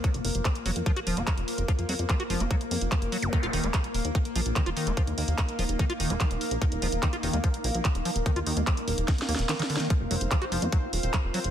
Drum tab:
HH |x--x--o--x--x--x--o--x--x--x--o--x--x--x--o--x--|x--x--o--x--x--x--o--x--x--x--o--x--x--x--o--x--|x--x--o--x--x--x--o--x--x--x--o--x--x--x--o--x--|x--x--o--x--x--x--o--x--x--x--o--x--x--x--o--x--|
CP |------------x-----------------------x-----------|------------x-----------------------x-----------|------------x-----------------------x-----------|------------x-----------------------x-----------|
SD |------------------------------------------------|------------------------------------------------|------------------------------------------------|------------------------------------------------|
BD |o-----------o-----------o-----------o-----------|o-----------o-----------o-----------o-----------|o-----------o-----------o-----------o-----------|o-----------o-----------o-----------o-----------|

HH |x--x--o--x--x--x--o--x--x--x--o--x--x--x--o--x--|x--x--o--x--x--x--o--x--x--x--o--x--x--x--o--x--|x-----o--x--x--x--o--x--x-----o--x--x-----o--x--|
CP |------------x-----------------------x-----------|------------x-----------------------x-----------|------------x-----------------------x-----------|
SD |------------------------------------------------|------------------------o---o---o---o---o---o---|------------------------------------------------|
BD |o-----------o-----------o-----------o-----------|o-----------o-----------o-----------------------|o-----------o-----------o-----------o-----------|